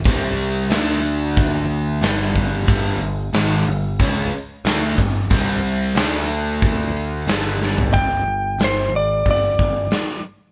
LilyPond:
<<
  \new Staff \with { instrumentName = "Lead electric guitar" } { \time 4/4 \key d \phrygian \tempo 4 = 91 r1 | r1 | r1 | g''4 c''8 d''8 d''4. r8 | }
  \new Staff \with { instrumentName = "Overdriven electric guitar" } { \clef bass \time 4/4 \key d \phrygian <c g c'>4 <d a d'>2 <g, d g>4 | <g, d g>8 <g, d>8 <aes, ees aes>8 <g, d>8 <cis aes cis'>8 r8 <d a d'>8 <g, d>8 | <c g c'>4 <d a d'>2 <g, d g>4 | r1 | }
  \new Staff \with { instrumentName = "Overdriven electric guitar" } { \clef bass \time 4/4 \key d \phrygian <c g c'>4 <d a d'>2 <g, d g>4 | <g, d g>8 <g, d>8 <aes, ees aes>8 <g, d>8 <cis aes cis'>8 r8 <d a d'>8 <g, d>8 | <c g c'>4 <d a d'>2 <g, d g>4 | r1 | }
  \new Staff \with { instrumentName = "Picked electric bass" } { \clef bass \time 4/4 \key d \phrygian c,4 d,2 g,,4 | g,,8 g,,8 aes,,8 g,,8 cis,8 r8 d,8 g,,8 | c,4 d,2 g,,4 | g,,8 g,,8 g,,8 aes,,8 g,,8 g,,8 r4 | }
  \new DrumStaff \with { instrumentName = "Drums" } \drummode { \time 4/4 <hho bd>8 hho8 <hho sn>8 hho8 <hho bd>8 hho8 <hho sn>8 <hho bd>8 | <hho bd>8 hho8 <hho sn>8 hho8 <hho bd>8 hho8 <hho sn>8 <hho bd>8 | <hho bd>8 hho8 <hho sn>8 hho8 <hho bd>8 hho8 <hho sn>8 sn16 tomfh16 | <hho bd>4 <hho sn>4 <hho bd>8 bd8 <hho sn>4 | }
>>